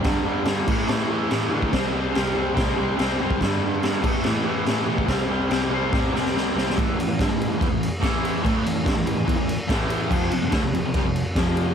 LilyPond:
<<
  \new Staff \with { instrumentName = "Distorted electric guitar" } { \clef bass \time 4/4 \key a \minor \tempo 4 = 143 <g, d g>8 <g, d g>8 <g, d g>8 <a, e a>8 <a, e a>8 <a, e a>8 <a, e a>8 <a, e a>8 | <c g c'>8 <c g c'>8 <c g c'>8 <c g c'>8 <c g c'>8 <c g c'>8 <c g c'>8 <c g c'>8 | <g, d g>8 <g, d g>8 <g, d g>8 <a, e a>8 <a, e a>8 <a, e a>8 <a, e a>8 <a, e a>8 | <c g c'>8 <c g c'>8 <c g c'>8 <c g c'>8 <c g c'>8 <c g c'>8 <c g c'>8 <c g c'>8 |
<a, e a>8 <a, e>16 <a, e>16 <g, d>16 <a, e>16 <a, e>16 <a, e>16 <e b>16 <a, e>8 r16 <a, e a>4 | <a, e a>8 <a, e>16 <a, e>16 <g, d>16 <a, e>16 <a, e>16 <a, e>16 <e b>16 <a, e>8 r16 <a, e a>4 | <f, c f>8 <f, c>16 <f, c>16 <d a>16 <f, c>16 <f, c>16 <f, c>16 <c g>16 <f, c>8 r16 <f, c f>4 | }
  \new Staff \with { instrumentName = "Cello" } { \clef bass \time 4/4 \key a \minor g,4 g,8 a,8 a,4 a,8 d8 | c,8 c,8 c,8 c,8 a,8 c,8 c,8 fis,8 | g,4 g,8 a,8 a,4 a,8 b,8 | c,8 c,8 c,8 c,8 a,8 c,8 c,8 c,8 |
a,8 a,16 a,16 g,16 a,16 a,16 a,16 e,16 a,8 r16 a,4 | a,8 a,16 a,16 g,16 a,16 a,16 a,16 e,16 a,8 r16 a,4 | f,8 f,16 f,16 d,16 f,16 f,16 f,16 c,16 f,8 r16 f,4 | }
  \new DrumStaff \with { instrumentName = "Drums" } \drummode { \time 4/4 <cymc bd sn>4 <cymc sn>8 <cymc bd>8 <cymc sn>4 <cymc sn>8. bd16 | <cymc bd sn>4 <cymc sn>4 <cymc bd sn>4 <cymc sn>8. bd16 | <cymc bd sn>4 <cymc sn>8 <cymc bd>8 <cymc sn>4 <cymc sn>8. bd16 | <cymc bd sn>4 <cymc sn>4 <bd sn>8 sn16 sn16 sn8 sn16 sn16 |
<bd cymr>8 cymr8 <bd cymr sn>8 cymr8 <bd cymr>8 cymr8 <bd cymr sn>8 cymr8 | <bd cymr>8 cymr8 <bd cymr sn>8 cymr8 <bd cymr>8 cymr8 <bd cymr sn>8 cymr8 | <cymc bd>8 cymr8 <bd cymr sn>8 cymr8 <bd cymr>8 cymr8 <bd cymr sn>8 cymr8 | }
>>